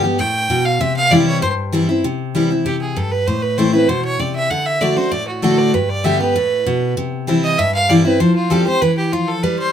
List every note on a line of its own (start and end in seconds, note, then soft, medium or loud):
0.00 0.16 G2 medium
0.00 0.18 G4 medium
0.05 0.19 B3 medium
0.19 0.48 A2 loud
0.19 0.67 G5 loud
0.50 0.79 B2 medium
0.65 0.83 F5 loud
0.81 1.39 C3 loud
0.81 0.96 E5 medium
0.96 1.13 F5 loud
1.11 1.40 E3 medium
1.11 1.41 G3 medium
1.11 1.41 C4 loud
1.11 1.41 E4 loud
1.11 1.27 D5 medium
1.27 1.41 C#5 loud
1.42 2.01 G2 loud
1.42 1.52 C5 medium
1.73 1.88 E3 medium
1.73 1.88 G3 medium
1.73 1.89 C4 medium
1.73 1.88 E4 loud
1.89 2.04 C4 medium
1.89 2.03 E4 medium
2.04 2.63 C3 medium
2.35 2.50 E3 medium
2.35 2.50 G3 medium
2.35 2.50 C4 medium
2.35 2.49 E4 medium
2.50 2.66 C4 soft
2.50 2.65 E4 medium
2.66 2.95 C3 medium
2.66 2.80 G4 medium
2.82 2.98 G#4 medium
2.96 3.26 G2 medium
2.96 3.13 A4 medium
3.12 3.29 B4 medium
3.27 3.86 A2 medium
3.27 3.44 C5 medium
3.42 3.59 B4 medium
3.58 3.73 E3 medium
3.58 3.73 A3 medium
3.58 3.74 C4 medium
3.58 3.72 E4 medium
3.58 3.73 C5 medium
3.73 3.89 C4 medium
3.73 3.88 E4 medium
3.73 3.90 B4 medium
3.88 4.18 B2 medium
3.88 4.04 C5 medium
4.05 4.21 C#5 medium
4.19 4.49 C3 medium
4.19 4.35 D5 medium
4.36 4.52 E5 loud
4.51 4.80 D3 medium
4.51 4.68 F#5 medium
4.66 4.83 E5 medium
4.81 4.96 D3 medium
4.81 4.97 A3 medium
4.81 4.97 D4 medium
4.81 4.95 F#4 medium
4.81 4.99 D5 medium
4.97 5.12 D4 medium
4.97 5.11 F#4 medium
4.97 5.13 C5 medium
5.12 5.70 A2 loud
5.12 5.27 D5 medium
5.28 5.44 F#4 soft
5.42 5.72 D3 medium
5.42 5.72 A3 medium
5.42 5.73 D4 medium
5.42 5.73 F#4 medium
5.42 5.60 A4 medium
5.58 5.75 D5 medium
5.74 6.32 G2 medium
5.74 5.91 B4 medium
5.89 6.06 D5 medium
6.04 6.19 D3 medium
6.04 6.20 G3 medium
6.04 6.20 B3 medium
6.04 6.19 G4 loud
6.04 6.20 E5 medium
6.20 6.36 B3 soft
6.20 6.35 G4 medium
6.20 6.93 B4 medium
6.36 6.65 A2 medium
6.66 6.96 B2 medium
6.97 7.56 C3 medium
7.27 7.57 E3 medium
7.27 7.57 G3 medium
7.27 7.57 C4 loud
7.27 7.58 E4 medium
7.44 7.60 D#5 medium
7.58 8.17 G2 loud
7.58 7.74 E5 loud
7.74 7.91 F5 loud
7.89 8.04 E3 medium
7.89 8.05 G3 medium
7.89 8.05 C4 medium
7.89 8.04 E4 loud
7.89 8.05 D5 medium
8.05 8.20 C4 medium
8.05 8.19 E4 medium
8.05 8.21 B4 medium
8.20 8.49 F3 loud
8.20 8.35 C5 medium
8.36 8.52 F4 medium
8.50 8.66 F3 medium
8.50 8.66 G3 medium
8.50 8.66 C4 loud
8.50 8.65 G4 loud
8.50 8.66 A4 medium
8.66 8.82 C4 soft
8.66 8.81 G4 medium
8.66 8.83 C5 loud
8.82 9.11 E3 medium
8.82 8.97 B4 medium
8.98 9.14 G4 medium
9.13 9.42 F3 medium
9.13 9.30 F4 medium
9.28 9.45 A4 medium
9.43 9.72 G3 medium
9.43 9.58 B4 medium
9.59 9.72 C5 loud